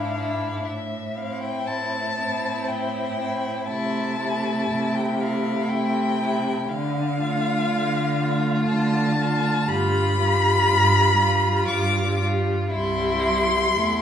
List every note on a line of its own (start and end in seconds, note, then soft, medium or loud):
0.00 0.55 G#2 soft
0.00 0.15 D4 soft
0.00 0.15 E4 soft
0.00 0.66 F5 medium
0.17 0.66 D4 soft
0.17 0.66 E4 soft
0.65 1.56 A2 soft
0.65 1.18 E5 soft
1.17 2.16 C4 soft
1.17 2.16 E4 soft
1.17 1.42 F5 medium
1.43 1.68 G5 medium
1.67 2.56 A2 medium
1.67 2.69 A5 medium
2.18 3.18 C4 soft
2.18 3.18 E4 soft
2.67 3.59 A2 soft
2.67 3.68 G5 medium
3.19 3.70 C4 soft
3.19 3.70 E4 soft
3.68 4.60 C3 medium
3.68 4.20 A3 soft
3.68 4.20 E4 soft
3.68 4.96 A5 medium
4.21 5.19 A3 soft
4.21 5.19 E4 soft
4.71 5.59 C3 medium
4.95 5.23 G5 medium
5.21 6.19 A3 soft
5.21 6.18 E4 soft
5.21 5.70 F5 medium
5.69 6.58 C3 medium
5.69 6.70 G5 medium
6.21 6.69 A3 soft
6.21 6.69 E4 soft
6.68 7.56 D3 medium
6.68 8.66 F5 medium
7.18 8.16 A3 soft
7.18 8.16 F4 soft
7.69 8.57 D3 medium
8.17 9.17 A3 medium
8.17 9.16 F4 medium
8.66 9.57 D3 medium
8.66 9.70 A5 medium
9.18 9.67 A3 soft
9.18 9.68 F4 medium
9.68 10.56 G2 medium
9.68 10.17 G3 soft
9.68 10.18 F4 medium
9.68 11.68 B5 loud
10.19 11.16 G3 soft
10.19 11.17 F4 medium
10.68 11.56 G2 medium
11.19 12.18 G3 medium
11.19 12.18 F4 medium
11.68 12.60 G2 medium
11.68 12.19 D6 medium
12.19 12.72 G3 medium
12.19 12.70 F4 soft
12.71 13.75 C2 medium
12.71 13.79 G3 medium
12.71 13.74 E4 medium
12.71 14.02 C6 medium
13.77 14.02 E2 medium
13.77 14.02 A3 medium
13.77 14.02 E4 medium